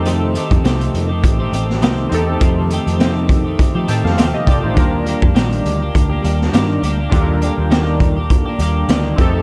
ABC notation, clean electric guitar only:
X:1
M:4/4
L:1/16
Q:"Swing 16ths" 1/4=102
K:Eblyd
V:1 name="Clean electric guitar"
[F,,C,E,A,CG]2 [E,A,CG]2 [F,,C,E,A,CG]3 [E,A,CG]2 [E,A,CG] [E,A,CG]2 [F,,C,E,A,CG]2 [E,A,CG] [E,A,CG] | [F,,C,E,A,CG]2 [E,A,CG]2 [F,,C,E,A,CG]3 [E,A,CG]2 [E,A,CG] [E,A,CG]2 [F,,C,E,A,CG]2 [E,A,CG] [E,A,CG] | [E,G,B,DG]2 [G,B,DG]2 [E,G,B,DG]3 [B,DG]2 [B,DG] [G,B,DG]2 [E,G,B,DG]2 [G,B,DG] [B,DG] | [E,G,B,DG]2 [G,B,DG]2 [E,G,B,DG]3 [B,DG]2 [B,DG] [G,B,DG]2 [E,G,B,DG]2 [E,A,CG] [E,A,CG] |]